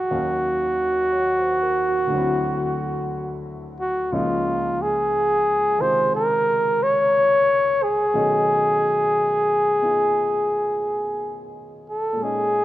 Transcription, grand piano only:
0.00 0.11 F2 soft
0.00 0.12 C3 soft
0.00 0.11 D#3 soft
0.00 0.12 G#3 soft
0.00 0.12 A#3 soft
0.00 0.12 D#4 soft
0.00 0.13 G#4 soft
0.00 0.11 F5 soft
0.11 2.12 D#2 soft
0.11 2.12 D#3 soft
0.11 2.11 F#3 soft
0.11 2.12 C#4 soft
0.11 2.12 F5 medium
1.12 1.59 C#5 soft
1.38 1.80 C5 soft
1.63 1.93 A#4 soft
1.89 2.23 F#4 soft
2.07 4.10 D2 soft
2.07 4.11 D3 soft
2.12 4.12 F#3 soft
2.12 4.14 C4 soft
2.18 4.15 E4 medium
4.12 8.14 C#2 soft
4.12 8.14 C#3 soft
4.12 8.14 F3 soft
4.12 8.14 A#3 soft
4.12 8.14 D#4 medium
5.78 8.14 C3 soft
5.78 8.13 D#3 soft
5.78 8.14 G#3 soft
5.78 8.15 F4 soft
8.14 12.18 B2 soft
8.14 12.18 D#3 soft
8.14 12.18 F#3 soft
8.14 12.19 A3 soft
8.14 12.19 C#4 soft
8.14 9.82 D#4 medium
9.82 12.18 B3 soft
9.82 12.19 D#4 soft
9.82 12.19 F4 soft
12.13 12.65 A#2 soft
12.13 12.65 G#3 soft
12.21 12.65 C#4 soft
12.21 12.65 D#4 soft

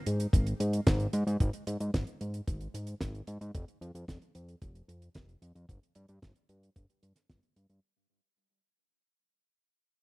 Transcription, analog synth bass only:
0.07 0.27 G#2 medium
0.33 0.54 G#1 medium
0.60 0.81 G#2 medium
0.87 1.07 G#1 loud
1.13 1.24 G#2 loud
1.27 1.37 G#2 medium
1.40 1.51 G#1 loud
1.67 1.77 G#2 medium
1.80 1.91 G#2 medium
1.94 2.04 G#1 medium
2.21 2.41 G#2 medium
2.47 2.68 G#1 medium
2.74 2.95 G#2 medium
3.01 3.22 G#1 loud
3.28 3.38 G#2 medium
3.41 3.51 G#2 medium
3.55 3.65 F1 loud
3.81 3.92 F2 medium
3.95 4.05 F2 medium
4.08 4.18 F1 medium
4.35 4.56 F2 medium
4.62 4.82 F1 medium
4.88 5.09 F2 medium
5.15 5.36 F1 loud
5.42 5.52 F2 medium
5.55 5.66 F2 medium
5.69 5.79 G1 loud
5.96 6.06 G2 medium
6.09 6.19 G2 medium
6.22 6.33 G1 medium
6.49 6.70 G2 medium
6.76 6.86 G1 medium
7.03 7.13 G2 medium
7.30 7.40 G1 medium
7.56 7.67 G2 loud
7.70 7.80 G2 medium

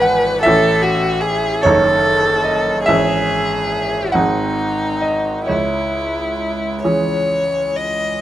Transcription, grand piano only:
0.00 0.40 G#1 medium
0.00 0.40 E3 soft
0.00 0.40 B3 soft
0.00 0.40 B4 soft
0.00 0.43 F#5 medium
0.00 0.45 G#5 loud
0.43 1.62 A1 medium
0.43 1.61 E3 soft
0.43 1.62 C#4 soft
0.43 1.61 A4 soft
0.43 1.64 E5 medium
1.63 2.84 F#1 medium
1.63 2.83 D#3 soft
1.63 2.84 D#4 soft
1.63 2.84 A4 soft
1.63 2.45 C#5 medium
2.44 2.86 D#5 medium
2.86 4.10 G#1 medium
2.86 4.10 E3 soft
2.86 4.10 C#4 soft
2.86 4.10 G#4 soft
2.86 4.13 E5 medium
4.12 5.44 G#1 medium
4.12 5.44 D#3 soft
4.12 5.44 C4 soft
4.12 5.45 G#4 soft
4.12 5.01 F#5 medium
5.01 5.47 D#5 medium
5.46 6.80 C#2 soft
5.46 6.83 C#5 soft
6.84 8.18 E3 soft
6.84 8.19 C#4 soft
6.84 8.18 G#4 soft

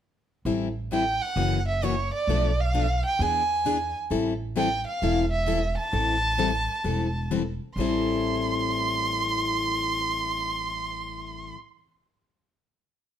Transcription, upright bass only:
0.45 1.18 A1 medium
1.36 2.09 F#1 medium
2.27 3.01 B1 medium
3.19 3.92 E2 medium
4.11 4.83 A1 medium
5.02 5.75 E1 medium
5.93 6.66 A1 medium
6.84 7.57 E1 medium
7.76 11.50 A1 medium

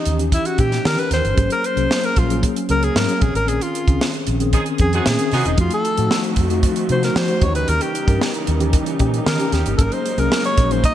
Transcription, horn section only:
4.53 4.64 F3 medium
4.53 4.64 D#4 medium
4.53 4.64 G#4 medium
4.92 5.04 F3 medium
4.92 5.04 D#4 medium
4.92 5.04 G#4 medium
5.32 5.49 F3 medium
5.32 5.49 D#4 medium
5.32 5.49 G#4 medium

